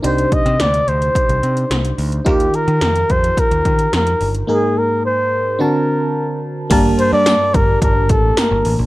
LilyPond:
<<
  \new Staff \with { instrumentName = "Flugelhorn" } { \time 4/4 \key ees \major \tempo 4 = 108 c''8 ees''8 d''8 c''2 r8 | g'8 bes'4 c''8 bes'4 bes'8. r16 | aes'8 bes'8 c''4 bes'4. r8 | \key g \minor r8 c''16 d''8. bes'8 bes'8 a'8 bes'8. r16 | }
  \new Staff \with { instrumentName = "FM electric piano" } { \time 4/4 \key ees \major <d' ees' g' c''>1 | <ees' f' g' bes'>1 | <bes ees' aes' bes'>2 <c' d' fis' a''>2 | \key g \minor <bes d' g' bes' a''>1 | }
  \new Staff \with { instrumentName = "FM electric piano" } { \clef bass \time 4/4 \key ees \major c4. r2 r8 | ees4. r2 r8 | aes,4. r8 d4. r8 | \key g \minor g,4. r2 r8 | }
  \new Staff \with { instrumentName = "Picked electric bass" } { \clef bass \time 4/4 \key ees \major c,8 r16 c16 d,8 d,8 r16 c,16 c8 c,8 d,8 | ees,8 r16 ees16 f,8 f,8 r16 ees,16 ees8 f,8 g,,8 | r1 | \key g \minor g,,8 r16 g,8 r16 g,,8 g,,8 a,,8 r16 g,,16 a,,16 bes,,16 | }
  \new DrumStaff \with { instrumentName = "Drums" } \drummode { \time 4/4 hh16 hh16 <hh bd>16 hh16 <hh sn>16 hh16 hh16 hh16 <hh bd>16 hh16 hh16 hh16 <hh sn>16 hh16 hho16 hh16 | <hh bd>16 hh16 hh16 hh16 <hh sn>16 hh16 <hh bd>16 hh16 <hh bd>16 hh16 <hh bd>16 hh16 <hh sn>16 hh16 hho16 hh16 | r4 r4 r4 r4 | <cymc hh bd>8 hh8 <hh sn tamb>8 <hh bd>8 <hh bd>8 <hh bd>8 <hh sn tamb>8 hho8 | }
>>